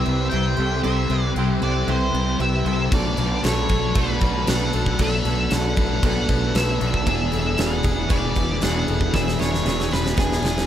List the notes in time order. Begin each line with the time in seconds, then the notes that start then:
Already playing: C3 G3 C4 E4 G4 C5 E5 C6 E6
0.06 C2 C3 G3 C4 B4
0.30 C2 C3 G3 C4 E4 G4 B4 C5 G5
0.57 C2 G3 C4 E4 G4 A4 C5
0.83 C2 C3 G3 C4 E4 G4 A4 C5 E5 F#6
1.10 C2 G3 C4 E4 G4 B4 C5
1.36 C2 C3 G3 C4 E4 G4 A4 C5
1.61 C2 C3 G3 C4 E4 G4 A4 C5 D5
1.87 C2 C3 G3 C4 E4 G4 B4 C5
1.91 C5
2.14 C2 C3 G3 C4 B4
2.39 C2 C3 G3 C4 E4 G4 B4 C5 E5
2.65 C2 G3 C4 E4 G4 A4 C5
2.91 B1 B2 F#3 A3 B3 D4 A4 D5 F#5 B5, kick, crash
3.17 B1 F#3 A3 B3 D4 A4 B4, crash
3.43 B1 B2 F#3 A3 B3 D4 A4 C#5, snare, crash
3.69 B1 B2 F#3 A3 B3 D4 A4, kick, crash
3.95 B1 B2 F#3 A3 B3 D4 A4 B4, kick, crash
4.21 B1 B2 F#3 B3 B4, kick, crash
4.47 B1 B2 F#3 A3 B3 D4 B4 F#5, snare, crash
4.51 A4
4.73 B1 F#3 A3 B3 D4 A4, crash
4.86 kick
4.99 B1 B2 F#3 A3 B3 D4 A4 E5, kick, crash
5.25 B1 F#3 B3 D4 A4 B4, crash
5.30 A3
5.51 B1 B2 F#3 A3 B3 D4 A4 F#5, snare, crash
5.77 B1 B2 F#3 B3 D4 A4, kick, crash
5.81 A3
6.03 B1 B2 F#3 A3 B3 D4 B4 F#5, kick, crash
6.07 A4
6.28 B1 B2 F#3 B3 B4, kick, crash
6.54 B1 B2 F#3 A3 B3 D4 A4 B4 E5, snare, crash
6.80 B1 F#3 A3 B3 D4 A4, crash
6.94 kick
7.06 E1 E2 B2 E3 B3 D4 G#4 E5 B5, kick, crash
7.31 E1 B2 E3 B3 D4 G#4 A4, crash
7.57 E1 E2 B2 E3 B3 D4 G#4 F#5, snare, crash
7.83 E1 E2 B2 E3 B3 D4 G#4, kick, crash
8.07 E1 E2 E3 B3 D4 G#4 B4 D5, kick, crash
8.12 B2 E3
8.35 E1 E2 B2 E3 B4, kick, crash
8.61 E1 E2 B2 E3 B3 D4 G#4 B4 F#5, snare, crash
8.86 E1 B2 E3 B3 D4 G#4 A4, crash
9.01 kick
9.13 E1 E2 B2 E3 B3 D4 G#4 E5, kick, snare
9.28 snare
9.38 E1 B2 E3 B3 D4 G#4 A4 C#5, snare
9.54 snare
9.64 E1 E2 B2 E3 B3 D4 G#4, snare
9.80 snare
9.91 E1 E2 B2 E3 B3 D4 G#4 B4, snare
10.06 snare
10.16 E1 E2 B2 E3 B3 D4 G#4 B4, kick, snare
10.32 snare
10.42 E1 E2 B2 E3 B4, snare
10.58 snare